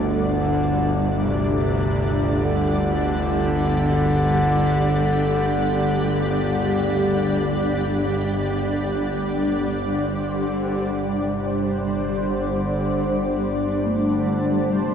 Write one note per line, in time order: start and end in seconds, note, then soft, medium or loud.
0.00 9.82 G1 medium
0.00 9.95 D2 medium
0.00 1.20 D3 loud
0.00 14.94 G3 medium
0.00 14.94 D4 medium
0.00 1.84 A4 medium
0.00 14.94 D5 medium
1.23 2.46 C3 medium
1.47 14.28 G4 medium
2.44 8.57 D3 loud
9.83 14.94 G1 medium
9.83 11.09 D3 loud
9.83 14.94 C5 medium
11.08 12.30 C3 medium
12.29 13.84 D3 medium
13.27 14.94 A5 medium
13.87 14.94 A3 medium
14.09 14.72 D3 medium
14.71 14.94 C3 loud